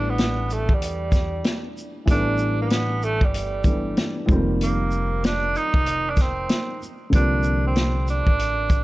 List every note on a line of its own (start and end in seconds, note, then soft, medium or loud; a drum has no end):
0.00 0.66 A1 loud
0.00 2.03 E3 medium
0.00 2.03 G3 medium
0.00 2.04 A3 medium
0.00 2.05 B3 medium
0.00 0.11 D4 loud
0.00 2.05 D4 medium
0.09 0.54 B3 medium
0.18 snare loud
0.18 closed hi-hat medium
0.50 0.75 A3 loud
0.50 closed hi-hat medium
0.50 shaker soft
0.69 1.40 E2 medium
0.69 kick medium
0.74 1.78 G3 medium
0.82 closed hi-hat loud
1.12 kick medium
1.12 snare soft
1.12 closed hi-hat medium
1.12 shaker medium
1.44 snare loud
1.44 closed hi-hat medium
1.78 shaker medium
2.06 3.19 A1 loud
2.06 3.61 E3 medium
2.06 3.62 G3 medium
2.06 3.63 A3 medium
2.06 kick loud
2.06 closed hi-hat medium
2.10 3.64 B3 medium
2.10 2.57 D4 loud
2.10 3.64 D4 medium
2.38 shaker medium
2.61 3.06 B3 medium
2.70 snare loud
2.70 closed hi-hat medium
3.02 3.26 A3 loud
3.02 shaker medium
3.21 3.93 G1 medium
3.21 4.30 G3 medium
3.21 kick medium
3.34 closed hi-hat loud
3.64 4.28 E3 soft
3.64 4.27 G3 soft
3.64 4.28 A3 soft
3.64 4.29 B3 soft
3.64 4.29 D4 soft
3.64 kick medium
3.64 closed hi-hat soft
3.64 shaker soft
3.97 snare loud
3.97 closed hi-hat medium
4.26 5.53 F1 medium
4.26 6.76 D#3 medium
4.26 6.76 F3 medium
4.26 6.77 G3 medium
4.26 4.38 A3 medium
4.26 kick loud
4.26 shaker medium
4.31 6.79 C4 medium
4.36 6.81 A#3 medium
4.61 5.21 A#3 medium
4.61 closed hi-hat medium
4.91 shaker soft
5.24 5.58 D4 loud
5.24 snare loud
5.24 closed hi-hat medium
5.55 6.11 D#4 loud
5.55 closed hi-hat medium
5.55 shaker soft
5.74 6.46 F1 medium
5.74 kick loud
5.86 closed hi-hat loud
6.09 6.23 D4 loud
6.17 kick medium
6.17 snare soft
6.17 closed hi-hat medium
6.17 shaker medium
6.21 6.83 C4 medium
6.49 snare loud
6.49 closed hi-hat medium
6.83 shaker medium
7.10 8.24 C2 loud
7.10 8.84 D3 medium
7.10 8.84 F3 medium
7.10 8.84 G3 medium
7.10 kick loud
7.10 closed hi-hat medium
7.14 8.84 A#3 medium
7.14 8.84 C4 medium
7.14 7.62 D4 loud
7.43 shaker medium
7.67 8.06 C4 medium
7.75 snare loud
7.75 closed hi-hat medium
8.08 8.84 D4 loud
8.08 closed hi-hat soft
8.08 shaker soft
8.27 8.84 A1 medium
8.27 kick medium
8.39 closed hi-hat medium
8.70 kick loud
8.70 closed hi-hat medium
8.70 shaker medium